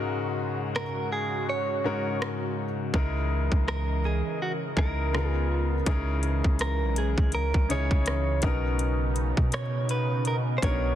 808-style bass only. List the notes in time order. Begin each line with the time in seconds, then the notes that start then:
2.94 C#2
3.52 C#2
4.77 C#2
5.87 C#2
6.45 C#2
6.82 B1
7.18 C#2
7.54 C#2
7.91 C#2
8.43 B1
9.38 B2
10.63 B1